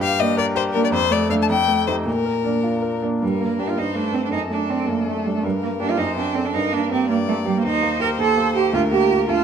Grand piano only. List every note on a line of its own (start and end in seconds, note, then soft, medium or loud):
0.00 0.89 G2 medium
0.00 0.31 G4 medium
0.19 0.49 D4 medium
0.37 0.67 A#4 medium
0.55 0.85 G4 medium
0.75 0.93 D4 medium
0.92 1.47 F2 medium
1.11 1.41 A3 medium
1.30 1.47 D4 medium
1.30 1.47 A4 medium
1.50 2.05 F2 medium
1.68 1.99 A3 soft
1.88 2.05 D#4 soft
1.88 2.05 G4 soft
2.06 3.18 A#2 medium
2.25 2.56 A#4 soft
2.44 2.75 D4 soft
2.63 2.95 F4 soft
2.82 3.14 A#4 soft
3.02 3.22 D4 soft
3.22 3.76 G2 soft
3.40 3.70 A#3 soft
3.59 3.76 D4 soft
3.59 3.76 G4 soft
3.77 4.31 G2 soft
3.95 4.25 A3 soft
4.13 4.30 C4 soft
4.13 4.30 A4 soft
4.31 4.85 F#2 soft
4.50 4.81 A3 soft
4.69 4.99 D4 soft
4.87 5.42 F#2 soft
5.06 5.36 A3 soft
5.26 5.44 D4 soft
5.43 5.97 G2 soft
5.63 5.92 A#3 soft
5.79 5.97 D4 soft
5.79 5.97 G4 soft
5.98 6.52 F#2 soft
6.17 6.46 C4 soft
6.35 6.52 D4 soft
6.35 6.52 A4 soft
6.54 7.08 G2 soft
6.73 7.02 A#3 soft
6.91 7.20 G4 soft
7.09 7.62 G2 soft
7.29 7.57 A#3 soft
7.45 7.64 G4 soft
7.65 8.17 D#2 soft
7.83 8.11 A#3 soft
8.01 8.30 G4 soft
8.18 8.72 D#2 soft
8.37 8.66 A#3 soft
8.56 8.74 G4 soft
8.73 9.27 D2 medium
8.92 9.21 A#3 soft
9.10 9.39 F4 soft
9.29 9.44 D2 soft